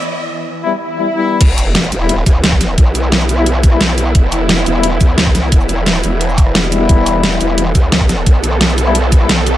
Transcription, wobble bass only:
X:1
M:4/4
L:1/8
Q:1/4=175
K:Em
V:1 name="Wobble bass" clef=bass
z8 | E,,,3 E,,,2 D,,3 | B,,,8 | E,,,3 E,,,2 D,,3 |
E,,,3 E,,,4- E,,, | E,,,3 E,,,2 D,,3 | B,,,8 |]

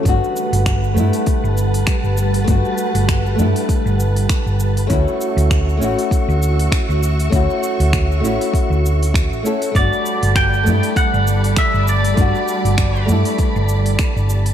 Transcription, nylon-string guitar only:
X:1
M:4/4
L:1/8
Q:"Swing 16ths" 1/4=99
K:Glyd
V:1 name="Nylon-string guitar"
[A,B,DF]3 [A,B,DE]4- [A,B,DE] | [A,B,DF]3 [A,B,DE]4- [A,B,DE] | [A,CEF]3 [A,CEF]4- [A,CEF] | [A,CEF]3 [A,CEF]4 [A,CEA] |
[A,B,DF]3 [A,B,DE]4- [A,B,DE] | [A,B,DF]3 [A,B,DE]4- [A,B,DE] |]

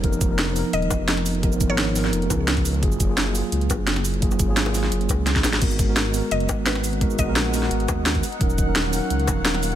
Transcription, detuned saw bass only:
X:1
M:4/4
L:1/16
Q:1/4=172
K:G#dor
V:1 name="Detuned saw bass" clef=bass
E,,,6- E,,, z D,,,2 E,,,6- | E,,,3 G,,,4- G,,, E,,,2 C,,6 | F,,,6- F,,, z C,,2 F,,,6- | F,,,3 G,,,4- G,,, F,,,2 C,,4 G,,,2 |
G,,,6- G,,, z F,,,2 G,,,6- | G,,,3 A,,,4- A,,, G,,,2 D,,4 z2 | D,,,6- D,,, z C,,2 D,,,6 |]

